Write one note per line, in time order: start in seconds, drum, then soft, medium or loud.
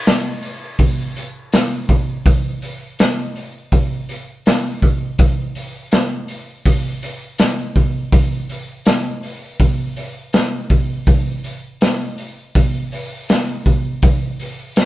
0.06 snare loud
0.06 open hi-hat medium
0.43 open hi-hat medium
0.79 kick medium
0.79 open hi-hat medium
1.16 open hi-hat medium
1.52 snare loud
1.52 open hi-hat medium
1.89 kick medium
1.89 open hi-hat soft
2.26 kick loud
2.26 open hi-hat medium
2.62 open hi-hat soft
2.99 snare loud
2.99 open hi-hat medium
3.36 open hi-hat soft
3.72 kick medium
3.72 open hi-hat medium
4.09 open hi-hat soft
4.46 snare loud
4.46 open hi-hat medium
4.82 kick medium
4.82 open hi-hat soft
5.18 kick loud
5.18 open hi-hat medium
5.55 open hi-hat soft
5.92 snare loud
5.92 open hi-hat medium
6.28 open hi-hat medium
6.65 kick medium
6.65 open hi-hat medium
7.03 open hi-hat medium
7.38 snare loud
7.38 open hi-hat medium
7.76 kick medium
7.76 open hi-hat medium
8.12 kick loud
8.12 open hi-hat medium
8.49 open hi-hat soft
8.85 snare loud
8.85 open hi-hat medium
9.23 open hi-hat medium
9.60 kick medium
9.60 open hi-hat medium
9.96 open hi-hat soft
10.33 snare loud
10.33 open hi-hat medium
10.70 kick medium
10.70 open hi-hat soft
11.07 kick loud
11.07 open hi-hat medium
11.44 open hi-hat soft
11.81 snare loud
11.81 open hi-hat medium
12.18 open hi-hat medium
12.55 kick medium
12.55 open hi-hat medium
12.92 open hi-hat medium
13.29 snare loud
13.29 open hi-hat medium
13.66 kick medium
13.66 open hi-hat medium
14.02 kick loud
14.02 open hi-hat medium
14.40 open hi-hat medium
14.76 snare loud
14.76 open hi-hat medium